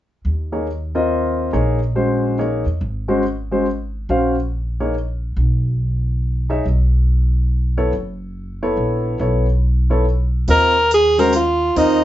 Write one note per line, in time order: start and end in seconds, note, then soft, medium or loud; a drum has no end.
0.25 1.49 D#2 medium
0.52 0.66 A#3 soft
0.52 0.66 D#4 soft
0.52 0.66 G#4 soft
0.52 0.66 C#5 medium
0.95 1.50 C4 medium
0.95 1.50 F4 medium
0.95 1.50 A#4 medium
0.95 1.50 D#5 medium
1.53 2.62 A#1 medium
1.53 1.78 A#3 medium
1.53 1.78 D#4 soft
1.53 1.78 G#4 medium
1.53 1.78 C#5 medium
1.95 2.37 G#3 soft
1.95 2.37 C#4 soft
1.95 2.37 F#4 soft
1.95 2.37 C5 medium
2.39 2.64 A#3 soft
2.39 2.64 D#4 soft
2.39 2.64 G#4 soft
2.39 2.64 C#5 medium
2.66 2.80 E2 medium
2.81 4.05 G#1 medium
3.08 3.22 G#3 medium
3.08 3.22 C#4 soft
3.08 3.22 F#4 medium
3.08 3.23 C5 medium
3.51 3.65 G#3 soft
3.51 3.65 C#4 soft
3.51 3.65 F#4 soft
3.51 3.65 C5 medium
4.09 5.33 A#1 medium
4.09 4.34 C#4 soft
4.09 4.34 F#4 soft
4.09 4.35 C5 soft
4.09 4.35 F5 medium
4.80 4.94 A#3 soft
4.80 4.94 D#4 soft
4.80 4.94 G#4 soft
4.80 4.94 C#5 medium
5.36 6.61 B1 medium
6.50 6.63 D#4 medium
6.50 6.63 G#4 soft
6.50 6.64 C#5 soft
6.50 6.64 E5 medium
6.65 7.89 B1 medium
7.77 7.91 B3 medium
7.77 7.91 E4 soft
7.77 7.91 A4 soft
7.77 7.91 C#5 medium
7.93 8.74 F#1 medium
8.63 9.17 B3 medium
8.63 9.17 E4 medium
8.63 9.17 A4 soft
8.63 9.17 C#5 medium
8.77 9.17 A#1 medium
9.20 10.44 B1 medium
9.20 9.45 B3 soft
9.20 9.45 E4 soft
9.20 9.45 A4 soft
9.20 9.45 C#5 medium
9.90 10.04 B3 medium
9.90 10.04 E4 soft
9.90 10.04 A4 medium
9.90 10.04 C#5 medium
10.48 11.72 D#2 medium
10.48 10.73 C4 soft
10.48 10.73 F4 soft
10.48 10.73 A#4 soft
10.48 10.89 A#4 medium
10.48 10.73 D#5 medium
10.48 open hi-hat soft
10.91 11.21 G#4 medium
10.91 closed hi-hat soft
11.18 11.32 G#3 medium
11.18 11.32 C#4 medium
11.18 11.32 F#4 medium
11.18 11.34 A#4 medium
11.18 11.32 C5 medium
11.18 open hi-hat soft
11.33 11.79 F4 medium
11.33 closed hi-hat soft
11.76 12.04 D#2 medium
11.76 12.01 C4 medium
11.76 12.04 D#4 medium
11.76 12.01 F4 medium
11.76 12.01 A#4 medium
11.76 12.01 D#5 medium
11.76 open hi-hat soft